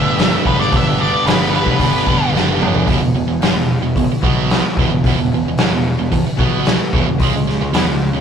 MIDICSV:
0, 0, Header, 1, 10, 480
1, 0, Start_track
1, 0, Tempo, 540054
1, 638, Time_signature, 4, 2, 24, 8
1, 7294, End_track
2, 0, Start_track
2, 0, Title_t, "Lead electric guitar"
2, 0, Program_c, 0, 29
2, 0, Note_on_c, 0, 76, 114
2, 376, Note_off_c, 0, 76, 0
2, 414, Note_on_c, 0, 71, 88
2, 530, Note_off_c, 0, 71, 0
2, 530, Note_on_c, 0, 74, 84
2, 636, Note_off_c, 0, 74, 0
2, 680, Note_on_c, 0, 76, 93
2, 898, Note_off_c, 0, 76, 0
2, 901, Note_on_c, 0, 74, 87
2, 1113, Note_off_c, 0, 74, 0
2, 1131, Note_on_c, 0, 71, 86
2, 1363, Note_off_c, 0, 71, 0
2, 1373, Note_on_c, 0, 71, 77
2, 2047, Note_off_c, 0, 71, 0
2, 7294, End_track
3, 0, Start_track
3, 0, Title_t, "Steel-string acoustic guitar"
3, 0, Program_c, 1, 25
3, 0, Note_on_c, 1, 55, 62
3, 0, Note_on_c, 1, 59, 64
3, 0, Note_on_c, 1, 62, 66
3, 0, Note_on_c, 1, 69, 60
3, 146, Note_off_c, 1, 55, 0
3, 158, Note_off_c, 1, 62, 0
3, 159, Note_off_c, 1, 59, 0
3, 171, Note_off_c, 1, 69, 0
3, 181, Note_on_c, 1, 69, 81
3, 382, Note_off_c, 1, 69, 0
3, 392, Note_on_c, 1, 69, 55
3, 635, Note_off_c, 1, 69, 0
3, 655, Note_on_c, 1, 69, 82
3, 1122, Note_off_c, 1, 69, 0
3, 1133, Note_on_c, 1, 69, 75
3, 1348, Note_off_c, 1, 69, 0
3, 1359, Note_on_c, 1, 69, 56
3, 1597, Note_off_c, 1, 69, 0
3, 1621, Note_on_c, 1, 69, 60
3, 2087, Note_off_c, 1, 69, 0
3, 2097, Note_on_c, 1, 69, 72
3, 2293, Note_off_c, 1, 69, 0
3, 2304, Note_on_c, 1, 69, 62
3, 2548, Note_off_c, 1, 69, 0
3, 7294, End_track
4, 0, Start_track
4, 0, Title_t, "String machine"
4, 0, Program_c, 2, 50
4, 0, Note_on_c, 2, 57, 77
4, 0, Note_on_c, 2, 67, 85
4, 0, Note_on_c, 2, 71, 80
4, 2519, Note_off_c, 2, 67, 0
4, 2520, Note_off_c, 2, 57, 0
4, 2521, Note_off_c, 2, 71, 0
4, 2543, Note_on_c, 2, 52, 75
4, 2545, Note_on_c, 2, 71, 76
4, 2556, Note_on_c, 2, 64, 77
4, 6358, Note_off_c, 2, 52, 0
4, 6359, Note_off_c, 2, 71, 0
4, 6365, Note_off_c, 2, 64, 0
4, 6406, Note_on_c, 2, 73, 79
4, 6410, Note_on_c, 2, 56, 74
4, 6410, Note_on_c, 2, 61, 74
4, 7294, Note_off_c, 2, 56, 0
4, 7294, Note_off_c, 2, 61, 0
4, 7294, Note_off_c, 2, 73, 0
4, 7294, End_track
5, 0, Start_track
5, 0, Title_t, "Overdriven electric guitar"
5, 0, Program_c, 3, 29
5, 0, Note_on_c, 3, 43, 75
5, 0, Note_on_c, 3, 50, 82
5, 0, Note_on_c, 3, 55, 91
5, 0, Note_on_c, 3, 59, 93
5, 0, Note_on_c, 3, 62, 96
5, 0, Note_on_c, 3, 67, 94
5, 150, Note_off_c, 3, 43, 0
5, 158, Note_off_c, 3, 50, 0
5, 161, Note_on_c, 3, 43, 85
5, 163, Note_off_c, 3, 55, 0
5, 165, Note_off_c, 3, 62, 0
5, 166, Note_on_c, 3, 55, 80
5, 167, Note_off_c, 3, 59, 0
5, 169, Note_on_c, 3, 50, 84
5, 171, Note_on_c, 3, 59, 87
5, 175, Note_on_c, 3, 62, 87
5, 180, Note_off_c, 3, 67, 0
5, 183, Note_on_c, 3, 67, 92
5, 386, Note_off_c, 3, 43, 0
5, 396, Note_off_c, 3, 50, 0
5, 396, Note_on_c, 3, 43, 84
5, 401, Note_off_c, 3, 62, 0
5, 406, Note_off_c, 3, 55, 0
5, 406, Note_on_c, 3, 50, 84
5, 408, Note_off_c, 3, 59, 0
5, 410, Note_off_c, 3, 67, 0
5, 410, Note_on_c, 3, 55, 81
5, 411, Note_on_c, 3, 59, 84
5, 411, Note_on_c, 3, 62, 91
5, 414, Note_on_c, 3, 67, 86
5, 620, Note_off_c, 3, 43, 0
5, 630, Note_off_c, 3, 50, 0
5, 631, Note_on_c, 3, 43, 95
5, 633, Note_off_c, 3, 55, 0
5, 635, Note_off_c, 3, 67, 0
5, 636, Note_off_c, 3, 59, 0
5, 637, Note_off_c, 3, 62, 0
5, 640, Note_on_c, 3, 50, 93
5, 643, Note_on_c, 3, 55, 94
5, 646, Note_on_c, 3, 67, 112
5, 647, Note_on_c, 3, 59, 97
5, 648, Note_on_c, 3, 62, 102
5, 868, Note_off_c, 3, 43, 0
5, 873, Note_off_c, 3, 55, 0
5, 874, Note_off_c, 3, 50, 0
5, 879, Note_off_c, 3, 59, 0
5, 879, Note_on_c, 3, 43, 87
5, 880, Note_off_c, 3, 62, 0
5, 884, Note_on_c, 3, 55, 89
5, 885, Note_on_c, 3, 50, 93
5, 887, Note_off_c, 3, 67, 0
5, 890, Note_on_c, 3, 59, 88
5, 891, Note_on_c, 3, 62, 98
5, 898, Note_on_c, 3, 67, 89
5, 1098, Note_off_c, 3, 43, 0
5, 1105, Note_off_c, 3, 50, 0
5, 1105, Note_off_c, 3, 59, 0
5, 1107, Note_off_c, 3, 55, 0
5, 1109, Note_off_c, 3, 62, 0
5, 1109, Note_on_c, 3, 43, 76
5, 1115, Note_off_c, 3, 67, 0
5, 1116, Note_on_c, 3, 50, 79
5, 1116, Note_on_c, 3, 59, 84
5, 1117, Note_on_c, 3, 55, 76
5, 1119, Note_on_c, 3, 62, 84
5, 1125, Note_on_c, 3, 67, 81
5, 1342, Note_off_c, 3, 43, 0
5, 1344, Note_off_c, 3, 50, 0
5, 1351, Note_off_c, 3, 55, 0
5, 1352, Note_on_c, 3, 43, 87
5, 1353, Note_off_c, 3, 59, 0
5, 1354, Note_on_c, 3, 50, 93
5, 1356, Note_off_c, 3, 62, 0
5, 1358, Note_off_c, 3, 67, 0
5, 1362, Note_on_c, 3, 55, 88
5, 1364, Note_on_c, 3, 59, 92
5, 1367, Note_on_c, 3, 62, 94
5, 1368, Note_on_c, 3, 67, 89
5, 1594, Note_off_c, 3, 43, 0
5, 1594, Note_off_c, 3, 50, 0
5, 1599, Note_off_c, 3, 55, 0
5, 1602, Note_off_c, 3, 59, 0
5, 1604, Note_on_c, 3, 50, 99
5, 1605, Note_on_c, 3, 43, 94
5, 1606, Note_off_c, 3, 62, 0
5, 1609, Note_on_c, 3, 55, 98
5, 1610, Note_off_c, 3, 67, 0
5, 1613, Note_on_c, 3, 59, 104
5, 1617, Note_on_c, 3, 62, 96
5, 1620, Note_on_c, 3, 67, 118
5, 1825, Note_off_c, 3, 43, 0
5, 1829, Note_off_c, 3, 50, 0
5, 1834, Note_off_c, 3, 55, 0
5, 1835, Note_off_c, 3, 62, 0
5, 1836, Note_off_c, 3, 59, 0
5, 1836, Note_on_c, 3, 43, 76
5, 1840, Note_on_c, 3, 50, 83
5, 1844, Note_on_c, 3, 55, 89
5, 1846, Note_off_c, 3, 67, 0
5, 1846, Note_on_c, 3, 59, 89
5, 1846, Note_on_c, 3, 62, 91
5, 1857, Note_on_c, 3, 67, 87
5, 2067, Note_off_c, 3, 43, 0
5, 2071, Note_off_c, 3, 50, 0
5, 2074, Note_off_c, 3, 55, 0
5, 2078, Note_on_c, 3, 43, 82
5, 2079, Note_off_c, 3, 62, 0
5, 2081, Note_off_c, 3, 59, 0
5, 2082, Note_on_c, 3, 50, 78
5, 2085, Note_off_c, 3, 67, 0
5, 2085, Note_on_c, 3, 55, 86
5, 2090, Note_on_c, 3, 62, 85
5, 2092, Note_on_c, 3, 59, 83
5, 2095, Note_on_c, 3, 67, 89
5, 2297, Note_off_c, 3, 43, 0
5, 2303, Note_off_c, 3, 50, 0
5, 2307, Note_off_c, 3, 55, 0
5, 2308, Note_on_c, 3, 43, 79
5, 2313, Note_off_c, 3, 59, 0
5, 2313, Note_off_c, 3, 67, 0
5, 2313, Note_on_c, 3, 50, 80
5, 2314, Note_off_c, 3, 62, 0
5, 2318, Note_on_c, 3, 55, 83
5, 2324, Note_on_c, 3, 59, 88
5, 2324, Note_on_c, 3, 62, 94
5, 2324, Note_on_c, 3, 67, 86
5, 2536, Note_off_c, 3, 43, 0
5, 2539, Note_off_c, 3, 50, 0
5, 2541, Note_off_c, 3, 55, 0
5, 2544, Note_off_c, 3, 59, 0
5, 2544, Note_off_c, 3, 62, 0
5, 2544, Note_off_c, 3, 67, 0
5, 2553, Note_on_c, 3, 40, 94
5, 2564, Note_on_c, 3, 47, 106
5, 2665, Note_off_c, 3, 40, 0
5, 2671, Note_off_c, 3, 47, 0
5, 2681, Note_on_c, 3, 47, 65
5, 2683, Note_on_c, 3, 40, 60
5, 2789, Note_off_c, 3, 40, 0
5, 2792, Note_off_c, 3, 47, 0
5, 2800, Note_on_c, 3, 40, 56
5, 2803, Note_on_c, 3, 47, 72
5, 2897, Note_off_c, 3, 40, 0
5, 2904, Note_off_c, 3, 47, 0
5, 2908, Note_on_c, 3, 40, 62
5, 2914, Note_on_c, 3, 47, 69
5, 3030, Note_off_c, 3, 40, 0
5, 3033, Note_off_c, 3, 47, 0
5, 3034, Note_on_c, 3, 43, 82
5, 3041, Note_on_c, 3, 50, 93
5, 3146, Note_off_c, 3, 43, 0
5, 3150, Note_off_c, 3, 50, 0
5, 3155, Note_on_c, 3, 40, 68
5, 3159, Note_on_c, 3, 47, 73
5, 3345, Note_off_c, 3, 40, 0
5, 3348, Note_off_c, 3, 47, 0
5, 3397, Note_on_c, 3, 40, 64
5, 3398, Note_on_c, 3, 47, 75
5, 3510, Note_off_c, 3, 40, 0
5, 3515, Note_off_c, 3, 47, 0
5, 3520, Note_on_c, 3, 40, 67
5, 3527, Note_on_c, 3, 47, 72
5, 3632, Note_off_c, 3, 40, 0
5, 3640, Note_off_c, 3, 47, 0
5, 3750, Note_on_c, 3, 47, 77
5, 3755, Note_on_c, 3, 59, 102
5, 3757, Note_on_c, 3, 54, 92
5, 4105, Note_off_c, 3, 47, 0
5, 4107, Note_off_c, 3, 59, 0
5, 4108, Note_off_c, 3, 54, 0
5, 4227, Note_on_c, 3, 40, 85
5, 4234, Note_on_c, 3, 47, 88
5, 4343, Note_off_c, 3, 40, 0
5, 4343, Note_off_c, 3, 47, 0
5, 4353, Note_on_c, 3, 40, 64
5, 4354, Note_on_c, 3, 47, 76
5, 4461, Note_off_c, 3, 40, 0
5, 4471, Note_on_c, 3, 40, 97
5, 4474, Note_off_c, 3, 47, 0
5, 4486, Note_on_c, 3, 47, 102
5, 4583, Note_off_c, 3, 40, 0
5, 4588, Note_off_c, 3, 47, 0
5, 4594, Note_on_c, 3, 40, 64
5, 4598, Note_on_c, 3, 47, 70
5, 4714, Note_off_c, 3, 40, 0
5, 4716, Note_off_c, 3, 47, 0
5, 4727, Note_on_c, 3, 40, 62
5, 4733, Note_on_c, 3, 47, 72
5, 4833, Note_off_c, 3, 40, 0
5, 4837, Note_off_c, 3, 47, 0
5, 4844, Note_on_c, 3, 40, 57
5, 4848, Note_on_c, 3, 47, 72
5, 4959, Note_off_c, 3, 40, 0
5, 4961, Note_off_c, 3, 47, 0
5, 4965, Note_on_c, 3, 43, 82
5, 4970, Note_on_c, 3, 50, 90
5, 5073, Note_off_c, 3, 43, 0
5, 5075, Note_off_c, 3, 50, 0
5, 5084, Note_on_c, 3, 40, 66
5, 5088, Note_on_c, 3, 47, 80
5, 5272, Note_off_c, 3, 40, 0
5, 5274, Note_off_c, 3, 47, 0
5, 5321, Note_on_c, 3, 40, 65
5, 5321, Note_on_c, 3, 47, 69
5, 5427, Note_off_c, 3, 47, 0
5, 5432, Note_off_c, 3, 40, 0
5, 5438, Note_on_c, 3, 47, 76
5, 5443, Note_on_c, 3, 40, 69
5, 5545, Note_off_c, 3, 40, 0
5, 5557, Note_off_c, 3, 47, 0
5, 5665, Note_on_c, 3, 47, 80
5, 5667, Note_on_c, 3, 54, 105
5, 5675, Note_on_c, 3, 59, 101
5, 6025, Note_off_c, 3, 47, 0
5, 6026, Note_off_c, 3, 54, 0
5, 6030, Note_off_c, 3, 59, 0
5, 6156, Note_on_c, 3, 40, 79
5, 6163, Note_on_c, 3, 47, 91
5, 6263, Note_off_c, 3, 40, 0
5, 6264, Note_off_c, 3, 47, 0
5, 6274, Note_on_c, 3, 40, 58
5, 6275, Note_on_c, 3, 47, 74
5, 6383, Note_off_c, 3, 47, 0
5, 6386, Note_on_c, 3, 49, 94
5, 6395, Note_on_c, 3, 56, 103
5, 6397, Note_off_c, 3, 40, 0
5, 6506, Note_off_c, 3, 49, 0
5, 6510, Note_off_c, 3, 56, 0
5, 6515, Note_on_c, 3, 49, 55
5, 6523, Note_on_c, 3, 56, 74
5, 6632, Note_off_c, 3, 49, 0
5, 6638, Note_off_c, 3, 56, 0
5, 6643, Note_on_c, 3, 49, 63
5, 6649, Note_on_c, 3, 56, 81
5, 6751, Note_off_c, 3, 49, 0
5, 6756, Note_off_c, 3, 56, 0
5, 6762, Note_on_c, 3, 49, 59
5, 6766, Note_on_c, 3, 56, 70
5, 6882, Note_off_c, 3, 49, 0
5, 6884, Note_off_c, 3, 56, 0
5, 6886, Note_on_c, 3, 52, 85
5, 6892, Note_on_c, 3, 59, 97
5, 6997, Note_off_c, 3, 52, 0
5, 7000, Note_off_c, 3, 59, 0
5, 7016, Note_on_c, 3, 49, 72
5, 7016, Note_on_c, 3, 56, 73
5, 7202, Note_off_c, 3, 49, 0
5, 7202, Note_off_c, 3, 56, 0
5, 7254, Note_on_c, 3, 49, 61
5, 7259, Note_on_c, 3, 56, 68
5, 7294, Note_off_c, 3, 49, 0
5, 7294, Note_off_c, 3, 56, 0
5, 7294, End_track
6, 0, Start_track
6, 0, Title_t, "Picked electric bass"
6, 0, Program_c, 4, 34
6, 149, Note_on_c, 4, 31, 99
6, 319, Note_off_c, 4, 31, 0
6, 404, Note_on_c, 4, 31, 97
6, 569, Note_off_c, 4, 31, 0
6, 639, Note_on_c, 4, 31, 92
6, 971, Note_off_c, 4, 31, 0
6, 1107, Note_on_c, 4, 31, 89
6, 1443, Note_off_c, 4, 31, 0
6, 1597, Note_on_c, 4, 31, 87
6, 1763, Note_off_c, 4, 31, 0
6, 1832, Note_on_c, 4, 31, 84
6, 2000, Note_off_c, 4, 31, 0
6, 2065, Note_on_c, 4, 30, 98
6, 2401, Note_off_c, 4, 30, 0
6, 2558, Note_on_c, 4, 28, 94
6, 2667, Note_off_c, 4, 28, 0
6, 2672, Note_on_c, 4, 28, 73
6, 2781, Note_off_c, 4, 28, 0
6, 2786, Note_on_c, 4, 28, 75
6, 2901, Note_off_c, 4, 28, 0
6, 2904, Note_on_c, 4, 28, 77
6, 3012, Note_off_c, 4, 28, 0
6, 3017, Note_on_c, 4, 31, 87
6, 3134, Note_off_c, 4, 31, 0
6, 3139, Note_on_c, 4, 28, 73
6, 3368, Note_off_c, 4, 28, 0
6, 3386, Note_on_c, 4, 28, 74
6, 3501, Note_off_c, 4, 28, 0
6, 3514, Note_on_c, 4, 28, 70
6, 3625, Note_off_c, 4, 28, 0
6, 3757, Note_on_c, 4, 35, 95
6, 4090, Note_off_c, 4, 35, 0
6, 4242, Note_on_c, 4, 28, 88
6, 4350, Note_off_c, 4, 28, 0
6, 4355, Note_on_c, 4, 28, 79
6, 4466, Note_off_c, 4, 28, 0
6, 4472, Note_on_c, 4, 28, 89
6, 4584, Note_off_c, 4, 28, 0
6, 4605, Note_on_c, 4, 28, 78
6, 4712, Note_off_c, 4, 28, 0
6, 4731, Note_on_c, 4, 28, 80
6, 4835, Note_off_c, 4, 28, 0
6, 4844, Note_on_c, 4, 28, 73
6, 4951, Note_off_c, 4, 28, 0
6, 4956, Note_on_c, 4, 31, 84
6, 5067, Note_off_c, 4, 31, 0
6, 5075, Note_on_c, 4, 28, 80
6, 5298, Note_off_c, 4, 28, 0
6, 5330, Note_on_c, 4, 28, 76
6, 5430, Note_off_c, 4, 28, 0
6, 5435, Note_on_c, 4, 28, 80
6, 5547, Note_off_c, 4, 28, 0
6, 5670, Note_on_c, 4, 35, 88
6, 6009, Note_off_c, 4, 35, 0
6, 6162, Note_on_c, 4, 28, 90
6, 6255, Note_off_c, 4, 28, 0
6, 6261, Note_on_c, 4, 28, 81
6, 6381, Note_off_c, 4, 28, 0
6, 6398, Note_on_c, 4, 37, 92
6, 6492, Note_off_c, 4, 37, 0
6, 6497, Note_on_c, 4, 37, 82
6, 6620, Note_off_c, 4, 37, 0
6, 6630, Note_on_c, 4, 37, 73
6, 6747, Note_off_c, 4, 37, 0
6, 6753, Note_on_c, 4, 37, 76
6, 6857, Note_off_c, 4, 37, 0
6, 6862, Note_on_c, 4, 40, 89
6, 6983, Note_off_c, 4, 40, 0
6, 6992, Note_on_c, 4, 37, 80
6, 7220, Note_off_c, 4, 37, 0
6, 7231, Note_on_c, 4, 37, 78
6, 7294, Note_off_c, 4, 37, 0
6, 7294, End_track
7, 0, Start_track
7, 0, Title_t, "Muted distorted electric guitar strokes"
7, 3659, Note_on_c, 9, 29, 59
7, 3748, Note_off_c, 9, 29, 0
7, 4127, Note_on_c, 9, 29, 57
7, 4215, Note_off_c, 9, 29, 0
7, 5571, Note_on_c, 9, 29, 53
7, 5660, Note_off_c, 9, 29, 0
7, 6052, Note_on_c, 9, 29, 59
7, 6141, Note_off_c, 9, 29, 0
7, 7294, End_track
8, 0, Start_track
8, 0, Title_t, "Muted overdriven electric guitar strokes"
8, 3642, Note_on_c, 9, 29, 56
8, 3731, Note_off_c, 9, 29, 0
8, 4120, Note_on_c, 9, 29, 59
8, 4209, Note_off_c, 9, 29, 0
8, 5556, Note_on_c, 9, 29, 59
8, 5645, Note_off_c, 9, 29, 0
8, 6043, Note_on_c, 9, 29, 56
8, 6132, Note_off_c, 9, 29, 0
8, 7294, End_track
9, 0, Start_track
9, 0, Title_t, "Muted picked electric bass strokes"
9, 3630, Note_on_c, 9, 29, 41
9, 3719, Note_off_c, 9, 29, 0
9, 4116, Note_on_c, 9, 29, 39
9, 4204, Note_off_c, 9, 29, 0
9, 5566, Note_on_c, 9, 29, 40
9, 5655, Note_off_c, 9, 29, 0
9, 6034, Note_on_c, 9, 29, 43
9, 6123, Note_off_c, 9, 29, 0
9, 7294, End_track
10, 0, Start_track
10, 0, Title_t, "Drums"
10, 167, Note_on_c, 9, 46, 56
10, 177, Note_on_c, 9, 38, 110
10, 256, Note_off_c, 9, 46, 0
10, 266, Note_off_c, 9, 38, 0
10, 403, Note_on_c, 9, 36, 88
10, 492, Note_off_c, 9, 36, 0
10, 545, Note_on_c, 9, 38, 32
10, 634, Note_off_c, 9, 38, 0
10, 643, Note_on_c, 9, 36, 109
10, 647, Note_on_c, 9, 46, 52
10, 732, Note_off_c, 9, 36, 0
10, 735, Note_off_c, 9, 46, 0
10, 1129, Note_on_c, 9, 46, 64
10, 1140, Note_on_c, 9, 38, 112
10, 1218, Note_off_c, 9, 46, 0
10, 1229, Note_off_c, 9, 38, 0
10, 1478, Note_on_c, 9, 36, 92
10, 1567, Note_off_c, 9, 36, 0
10, 1596, Note_on_c, 9, 36, 94
10, 1602, Note_on_c, 9, 46, 63
10, 1685, Note_off_c, 9, 36, 0
10, 1691, Note_off_c, 9, 46, 0
10, 1837, Note_on_c, 9, 36, 86
10, 1925, Note_off_c, 9, 36, 0
10, 2093, Note_on_c, 9, 38, 57
10, 2182, Note_off_c, 9, 38, 0
10, 2325, Note_on_c, 9, 45, 96
10, 2414, Note_off_c, 9, 45, 0
10, 2439, Note_on_c, 9, 43, 95
10, 2528, Note_off_c, 9, 43, 0
10, 2555, Note_on_c, 9, 36, 101
10, 2557, Note_on_c, 9, 46, 54
10, 2643, Note_off_c, 9, 36, 0
10, 2646, Note_off_c, 9, 46, 0
10, 3039, Note_on_c, 9, 46, 52
10, 3049, Note_on_c, 9, 38, 104
10, 3128, Note_off_c, 9, 46, 0
10, 3138, Note_off_c, 9, 38, 0
10, 3518, Note_on_c, 9, 36, 93
10, 3525, Note_on_c, 9, 46, 49
10, 3607, Note_off_c, 9, 36, 0
10, 3613, Note_off_c, 9, 46, 0
10, 3759, Note_on_c, 9, 36, 96
10, 3848, Note_off_c, 9, 36, 0
10, 4002, Note_on_c, 9, 46, 48
10, 4012, Note_on_c, 9, 38, 102
10, 4090, Note_off_c, 9, 46, 0
10, 4101, Note_off_c, 9, 38, 0
10, 4240, Note_on_c, 9, 36, 105
10, 4261, Note_on_c, 9, 38, 31
10, 4329, Note_off_c, 9, 36, 0
10, 4350, Note_off_c, 9, 38, 0
10, 4480, Note_on_c, 9, 36, 98
10, 4487, Note_on_c, 9, 46, 47
10, 4569, Note_off_c, 9, 36, 0
10, 4576, Note_off_c, 9, 46, 0
10, 4955, Note_on_c, 9, 46, 60
10, 4966, Note_on_c, 9, 38, 114
10, 5044, Note_off_c, 9, 46, 0
10, 5055, Note_off_c, 9, 38, 0
10, 5438, Note_on_c, 9, 46, 55
10, 5440, Note_on_c, 9, 36, 84
10, 5527, Note_off_c, 9, 46, 0
10, 5529, Note_off_c, 9, 36, 0
10, 5678, Note_on_c, 9, 36, 106
10, 5767, Note_off_c, 9, 36, 0
10, 5916, Note_on_c, 9, 46, 56
10, 5927, Note_on_c, 9, 38, 110
10, 6005, Note_off_c, 9, 46, 0
10, 6016, Note_off_c, 9, 38, 0
10, 6160, Note_on_c, 9, 36, 106
10, 6249, Note_off_c, 9, 36, 0
10, 6395, Note_on_c, 9, 46, 56
10, 6398, Note_on_c, 9, 36, 98
10, 6484, Note_off_c, 9, 46, 0
10, 6487, Note_off_c, 9, 36, 0
10, 6656, Note_on_c, 9, 38, 31
10, 6744, Note_off_c, 9, 38, 0
10, 6877, Note_on_c, 9, 46, 55
10, 6887, Note_on_c, 9, 38, 109
10, 6966, Note_off_c, 9, 46, 0
10, 6976, Note_off_c, 9, 38, 0
10, 7294, End_track
0, 0, End_of_file